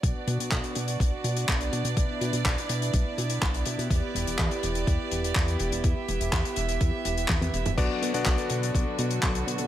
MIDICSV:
0, 0, Header, 1, 5, 480
1, 0, Start_track
1, 0, Key_signature, 2, "minor"
1, 0, Tempo, 483871
1, 35, Time_signature, 4, 2, 24, 8
1, 9594, End_track
2, 0, Start_track
2, 0, Title_t, "String section"
2, 0, Program_c, 0, 48
2, 31, Note_on_c, 0, 62, 63
2, 31, Note_on_c, 0, 66, 64
2, 31, Note_on_c, 0, 74, 76
2, 33, Note_on_c, 0, 59, 70
2, 1934, Note_off_c, 0, 66, 0
2, 1953, Note_on_c, 0, 64, 63
2, 3835, Note_off_c, 0, 62, 0
2, 3835, Note_off_c, 0, 74, 0
2, 3874, Note_on_c, 0, 74, 81
2, 3876, Note_on_c, 0, 67, 65
2, 5775, Note_off_c, 0, 74, 0
2, 5794, Note_on_c, 0, 76, 79
2, 7674, Note_off_c, 0, 59, 0
2, 7674, Note_off_c, 0, 64, 0
2, 7677, Note_off_c, 0, 67, 0
2, 7695, Note_off_c, 0, 76, 0
2, 7714, Note_on_c, 0, 50, 74
2, 7714, Note_on_c, 0, 54, 67
2, 7714, Note_on_c, 0, 59, 67
2, 7715, Note_on_c, 0, 66, 82
2, 9594, Note_off_c, 0, 50, 0
2, 9594, Note_off_c, 0, 54, 0
2, 9594, Note_off_c, 0, 59, 0
2, 9594, Note_off_c, 0, 66, 0
2, 9594, End_track
3, 0, Start_track
3, 0, Title_t, "Electric grand piano"
3, 0, Program_c, 1, 2
3, 7713, Note_on_c, 1, 59, 95
3, 7713, Note_on_c, 1, 66, 87
3, 7713, Note_on_c, 1, 74, 101
3, 7714, Note_on_c, 1, 62, 86
3, 8045, Note_off_c, 1, 59, 0
3, 8045, Note_off_c, 1, 66, 0
3, 8046, Note_off_c, 1, 62, 0
3, 8046, Note_off_c, 1, 74, 0
3, 8075, Note_on_c, 1, 62, 85
3, 8075, Note_on_c, 1, 66, 81
3, 8075, Note_on_c, 1, 74, 98
3, 8076, Note_on_c, 1, 59, 91
3, 9594, Note_off_c, 1, 59, 0
3, 9594, Note_off_c, 1, 62, 0
3, 9594, Note_off_c, 1, 66, 0
3, 9594, Note_off_c, 1, 74, 0
3, 9594, End_track
4, 0, Start_track
4, 0, Title_t, "Analog synth bass"
4, 0, Program_c, 2, 38
4, 33, Note_on_c, 2, 35, 91
4, 138, Note_off_c, 2, 35, 0
4, 271, Note_on_c, 2, 47, 100
4, 377, Note_off_c, 2, 47, 0
4, 393, Note_on_c, 2, 47, 76
4, 498, Note_off_c, 2, 47, 0
4, 512, Note_on_c, 2, 35, 93
4, 618, Note_off_c, 2, 35, 0
4, 753, Note_on_c, 2, 47, 86
4, 962, Note_off_c, 2, 47, 0
4, 992, Note_on_c, 2, 35, 91
4, 1098, Note_off_c, 2, 35, 0
4, 1230, Note_on_c, 2, 47, 80
4, 1441, Note_off_c, 2, 47, 0
4, 1474, Note_on_c, 2, 35, 75
4, 1683, Note_off_c, 2, 35, 0
4, 1711, Note_on_c, 2, 47, 96
4, 1818, Note_off_c, 2, 47, 0
4, 1831, Note_on_c, 2, 47, 77
4, 1937, Note_off_c, 2, 47, 0
4, 1953, Note_on_c, 2, 35, 94
4, 2058, Note_off_c, 2, 35, 0
4, 2192, Note_on_c, 2, 47, 99
4, 2298, Note_off_c, 2, 47, 0
4, 2312, Note_on_c, 2, 47, 79
4, 2418, Note_off_c, 2, 47, 0
4, 2433, Note_on_c, 2, 35, 93
4, 2538, Note_off_c, 2, 35, 0
4, 2671, Note_on_c, 2, 47, 88
4, 2882, Note_off_c, 2, 47, 0
4, 2913, Note_on_c, 2, 35, 90
4, 3018, Note_off_c, 2, 35, 0
4, 3152, Note_on_c, 2, 47, 83
4, 3362, Note_off_c, 2, 47, 0
4, 3393, Note_on_c, 2, 35, 76
4, 3602, Note_off_c, 2, 35, 0
4, 3632, Note_on_c, 2, 47, 99
4, 3738, Note_off_c, 2, 47, 0
4, 3753, Note_on_c, 2, 47, 78
4, 3858, Note_off_c, 2, 47, 0
4, 3873, Note_on_c, 2, 40, 94
4, 3978, Note_off_c, 2, 40, 0
4, 4114, Note_on_c, 2, 28, 103
4, 4219, Note_off_c, 2, 28, 0
4, 4233, Note_on_c, 2, 28, 79
4, 4338, Note_off_c, 2, 28, 0
4, 4353, Note_on_c, 2, 40, 93
4, 4458, Note_off_c, 2, 40, 0
4, 4594, Note_on_c, 2, 28, 89
4, 4803, Note_off_c, 2, 28, 0
4, 4834, Note_on_c, 2, 40, 94
4, 4939, Note_off_c, 2, 40, 0
4, 5075, Note_on_c, 2, 28, 85
4, 5283, Note_off_c, 2, 28, 0
4, 5313, Note_on_c, 2, 40, 76
4, 5523, Note_off_c, 2, 40, 0
4, 5554, Note_on_c, 2, 28, 98
4, 5659, Note_off_c, 2, 28, 0
4, 5675, Note_on_c, 2, 28, 83
4, 5779, Note_off_c, 2, 28, 0
4, 5793, Note_on_c, 2, 40, 99
4, 5898, Note_off_c, 2, 40, 0
4, 6035, Note_on_c, 2, 28, 102
4, 6139, Note_off_c, 2, 28, 0
4, 6153, Note_on_c, 2, 28, 78
4, 6258, Note_off_c, 2, 28, 0
4, 6273, Note_on_c, 2, 40, 91
4, 6378, Note_off_c, 2, 40, 0
4, 6515, Note_on_c, 2, 28, 89
4, 6723, Note_off_c, 2, 28, 0
4, 6754, Note_on_c, 2, 40, 93
4, 6859, Note_off_c, 2, 40, 0
4, 6995, Note_on_c, 2, 28, 84
4, 7203, Note_off_c, 2, 28, 0
4, 7234, Note_on_c, 2, 40, 77
4, 7443, Note_off_c, 2, 40, 0
4, 7474, Note_on_c, 2, 28, 102
4, 7579, Note_off_c, 2, 28, 0
4, 7593, Note_on_c, 2, 28, 82
4, 7698, Note_off_c, 2, 28, 0
4, 7713, Note_on_c, 2, 35, 99
4, 7819, Note_off_c, 2, 35, 0
4, 7956, Note_on_c, 2, 47, 104
4, 8060, Note_off_c, 2, 47, 0
4, 8075, Note_on_c, 2, 47, 81
4, 8179, Note_off_c, 2, 47, 0
4, 8195, Note_on_c, 2, 35, 99
4, 8299, Note_off_c, 2, 35, 0
4, 8433, Note_on_c, 2, 47, 91
4, 8643, Note_off_c, 2, 47, 0
4, 8675, Note_on_c, 2, 35, 97
4, 8779, Note_off_c, 2, 35, 0
4, 8914, Note_on_c, 2, 47, 85
4, 9123, Note_off_c, 2, 47, 0
4, 9155, Note_on_c, 2, 35, 80
4, 9363, Note_off_c, 2, 35, 0
4, 9394, Note_on_c, 2, 47, 100
4, 9499, Note_off_c, 2, 47, 0
4, 9515, Note_on_c, 2, 47, 83
4, 9594, Note_off_c, 2, 47, 0
4, 9594, End_track
5, 0, Start_track
5, 0, Title_t, "Drums"
5, 33, Note_on_c, 9, 36, 108
5, 36, Note_on_c, 9, 42, 85
5, 132, Note_off_c, 9, 36, 0
5, 135, Note_off_c, 9, 42, 0
5, 274, Note_on_c, 9, 42, 76
5, 373, Note_off_c, 9, 42, 0
5, 400, Note_on_c, 9, 42, 60
5, 500, Note_off_c, 9, 42, 0
5, 511, Note_on_c, 9, 39, 93
5, 512, Note_on_c, 9, 42, 79
5, 513, Note_on_c, 9, 36, 105
5, 611, Note_off_c, 9, 39, 0
5, 611, Note_off_c, 9, 42, 0
5, 612, Note_off_c, 9, 36, 0
5, 632, Note_on_c, 9, 42, 45
5, 732, Note_off_c, 9, 42, 0
5, 748, Note_on_c, 9, 42, 78
5, 847, Note_off_c, 9, 42, 0
5, 871, Note_on_c, 9, 42, 62
5, 970, Note_off_c, 9, 42, 0
5, 993, Note_on_c, 9, 36, 104
5, 1002, Note_on_c, 9, 42, 78
5, 1092, Note_off_c, 9, 36, 0
5, 1101, Note_off_c, 9, 42, 0
5, 1233, Note_on_c, 9, 42, 79
5, 1332, Note_off_c, 9, 42, 0
5, 1354, Note_on_c, 9, 42, 64
5, 1453, Note_off_c, 9, 42, 0
5, 1473, Note_on_c, 9, 36, 102
5, 1474, Note_on_c, 9, 42, 81
5, 1476, Note_on_c, 9, 39, 112
5, 1572, Note_off_c, 9, 36, 0
5, 1573, Note_off_c, 9, 42, 0
5, 1575, Note_off_c, 9, 39, 0
5, 1593, Note_on_c, 9, 42, 51
5, 1693, Note_off_c, 9, 42, 0
5, 1714, Note_on_c, 9, 42, 81
5, 1813, Note_off_c, 9, 42, 0
5, 1833, Note_on_c, 9, 42, 67
5, 1932, Note_off_c, 9, 42, 0
5, 1952, Note_on_c, 9, 36, 107
5, 1952, Note_on_c, 9, 42, 84
5, 2052, Note_off_c, 9, 36, 0
5, 2052, Note_off_c, 9, 42, 0
5, 2196, Note_on_c, 9, 42, 75
5, 2295, Note_off_c, 9, 42, 0
5, 2312, Note_on_c, 9, 42, 56
5, 2411, Note_off_c, 9, 42, 0
5, 2431, Note_on_c, 9, 42, 75
5, 2433, Note_on_c, 9, 36, 106
5, 2437, Note_on_c, 9, 39, 118
5, 2530, Note_off_c, 9, 42, 0
5, 2532, Note_off_c, 9, 36, 0
5, 2537, Note_off_c, 9, 39, 0
5, 2561, Note_on_c, 9, 42, 52
5, 2660, Note_off_c, 9, 42, 0
5, 2671, Note_on_c, 9, 42, 85
5, 2770, Note_off_c, 9, 42, 0
5, 2798, Note_on_c, 9, 42, 61
5, 2897, Note_off_c, 9, 42, 0
5, 2911, Note_on_c, 9, 42, 80
5, 2913, Note_on_c, 9, 36, 106
5, 3010, Note_off_c, 9, 42, 0
5, 3012, Note_off_c, 9, 36, 0
5, 3155, Note_on_c, 9, 42, 77
5, 3255, Note_off_c, 9, 42, 0
5, 3269, Note_on_c, 9, 42, 69
5, 3369, Note_off_c, 9, 42, 0
5, 3393, Note_on_c, 9, 36, 113
5, 3397, Note_on_c, 9, 39, 106
5, 3398, Note_on_c, 9, 42, 71
5, 3492, Note_off_c, 9, 36, 0
5, 3497, Note_off_c, 9, 39, 0
5, 3497, Note_off_c, 9, 42, 0
5, 3514, Note_on_c, 9, 42, 52
5, 3613, Note_off_c, 9, 42, 0
5, 3626, Note_on_c, 9, 42, 86
5, 3725, Note_off_c, 9, 42, 0
5, 3760, Note_on_c, 9, 42, 57
5, 3859, Note_off_c, 9, 42, 0
5, 3873, Note_on_c, 9, 36, 118
5, 3876, Note_on_c, 9, 42, 87
5, 3972, Note_off_c, 9, 36, 0
5, 3976, Note_off_c, 9, 42, 0
5, 4123, Note_on_c, 9, 42, 82
5, 4222, Note_off_c, 9, 42, 0
5, 4239, Note_on_c, 9, 42, 61
5, 4338, Note_off_c, 9, 42, 0
5, 4350, Note_on_c, 9, 39, 121
5, 4353, Note_on_c, 9, 36, 115
5, 4353, Note_on_c, 9, 42, 73
5, 4449, Note_off_c, 9, 39, 0
5, 4452, Note_off_c, 9, 42, 0
5, 4453, Note_off_c, 9, 36, 0
5, 4476, Note_on_c, 9, 42, 48
5, 4576, Note_off_c, 9, 42, 0
5, 4593, Note_on_c, 9, 42, 85
5, 4693, Note_off_c, 9, 42, 0
5, 4714, Note_on_c, 9, 42, 59
5, 4813, Note_off_c, 9, 42, 0
5, 4834, Note_on_c, 9, 36, 106
5, 4835, Note_on_c, 9, 42, 79
5, 4933, Note_off_c, 9, 36, 0
5, 4934, Note_off_c, 9, 42, 0
5, 5073, Note_on_c, 9, 42, 76
5, 5172, Note_off_c, 9, 42, 0
5, 5202, Note_on_c, 9, 42, 66
5, 5301, Note_off_c, 9, 42, 0
5, 5311, Note_on_c, 9, 39, 100
5, 5314, Note_on_c, 9, 36, 111
5, 5316, Note_on_c, 9, 42, 84
5, 5410, Note_off_c, 9, 39, 0
5, 5413, Note_off_c, 9, 36, 0
5, 5415, Note_off_c, 9, 42, 0
5, 5436, Note_on_c, 9, 42, 50
5, 5536, Note_off_c, 9, 42, 0
5, 5550, Note_on_c, 9, 42, 76
5, 5649, Note_off_c, 9, 42, 0
5, 5677, Note_on_c, 9, 42, 65
5, 5776, Note_off_c, 9, 42, 0
5, 5791, Note_on_c, 9, 42, 80
5, 5793, Note_on_c, 9, 36, 114
5, 5891, Note_off_c, 9, 42, 0
5, 5893, Note_off_c, 9, 36, 0
5, 6036, Note_on_c, 9, 42, 71
5, 6135, Note_off_c, 9, 42, 0
5, 6158, Note_on_c, 9, 42, 54
5, 6257, Note_off_c, 9, 42, 0
5, 6273, Note_on_c, 9, 36, 113
5, 6274, Note_on_c, 9, 42, 75
5, 6278, Note_on_c, 9, 39, 112
5, 6373, Note_off_c, 9, 36, 0
5, 6373, Note_off_c, 9, 42, 0
5, 6377, Note_off_c, 9, 39, 0
5, 6401, Note_on_c, 9, 42, 51
5, 6501, Note_off_c, 9, 42, 0
5, 6509, Note_on_c, 9, 42, 80
5, 6608, Note_off_c, 9, 42, 0
5, 6632, Note_on_c, 9, 42, 66
5, 6731, Note_off_c, 9, 42, 0
5, 6752, Note_on_c, 9, 42, 74
5, 6753, Note_on_c, 9, 36, 107
5, 6851, Note_off_c, 9, 42, 0
5, 6853, Note_off_c, 9, 36, 0
5, 6994, Note_on_c, 9, 42, 83
5, 7094, Note_off_c, 9, 42, 0
5, 7117, Note_on_c, 9, 42, 59
5, 7216, Note_off_c, 9, 42, 0
5, 7223, Note_on_c, 9, 39, 108
5, 7234, Note_on_c, 9, 36, 112
5, 7235, Note_on_c, 9, 42, 73
5, 7238, Note_on_c, 9, 48, 54
5, 7322, Note_off_c, 9, 39, 0
5, 7333, Note_off_c, 9, 36, 0
5, 7334, Note_off_c, 9, 42, 0
5, 7337, Note_off_c, 9, 48, 0
5, 7355, Note_on_c, 9, 48, 57
5, 7361, Note_on_c, 9, 42, 50
5, 7454, Note_off_c, 9, 48, 0
5, 7460, Note_off_c, 9, 42, 0
5, 7477, Note_on_c, 9, 42, 70
5, 7576, Note_off_c, 9, 42, 0
5, 7595, Note_on_c, 9, 42, 59
5, 7599, Note_on_c, 9, 45, 69
5, 7694, Note_off_c, 9, 42, 0
5, 7698, Note_off_c, 9, 45, 0
5, 7714, Note_on_c, 9, 36, 113
5, 7716, Note_on_c, 9, 49, 90
5, 7720, Note_on_c, 9, 42, 80
5, 7813, Note_off_c, 9, 36, 0
5, 7816, Note_off_c, 9, 49, 0
5, 7819, Note_off_c, 9, 42, 0
5, 7961, Note_on_c, 9, 42, 89
5, 8060, Note_off_c, 9, 42, 0
5, 8078, Note_on_c, 9, 42, 65
5, 8177, Note_off_c, 9, 42, 0
5, 8190, Note_on_c, 9, 39, 122
5, 8195, Note_on_c, 9, 36, 111
5, 8198, Note_on_c, 9, 42, 87
5, 8289, Note_off_c, 9, 39, 0
5, 8294, Note_off_c, 9, 36, 0
5, 8297, Note_off_c, 9, 42, 0
5, 8312, Note_on_c, 9, 42, 49
5, 8412, Note_off_c, 9, 42, 0
5, 8428, Note_on_c, 9, 42, 91
5, 8527, Note_off_c, 9, 42, 0
5, 8562, Note_on_c, 9, 42, 67
5, 8661, Note_off_c, 9, 42, 0
5, 8676, Note_on_c, 9, 36, 108
5, 8682, Note_on_c, 9, 42, 80
5, 8775, Note_off_c, 9, 36, 0
5, 8782, Note_off_c, 9, 42, 0
5, 8914, Note_on_c, 9, 42, 85
5, 9013, Note_off_c, 9, 42, 0
5, 9032, Note_on_c, 9, 42, 60
5, 9132, Note_off_c, 9, 42, 0
5, 9147, Note_on_c, 9, 42, 77
5, 9154, Note_on_c, 9, 39, 106
5, 9156, Note_on_c, 9, 36, 118
5, 9246, Note_off_c, 9, 42, 0
5, 9253, Note_off_c, 9, 39, 0
5, 9255, Note_off_c, 9, 36, 0
5, 9276, Note_on_c, 9, 42, 54
5, 9376, Note_off_c, 9, 42, 0
5, 9403, Note_on_c, 9, 42, 95
5, 9503, Note_off_c, 9, 42, 0
5, 9505, Note_on_c, 9, 42, 57
5, 9594, Note_off_c, 9, 42, 0
5, 9594, End_track
0, 0, End_of_file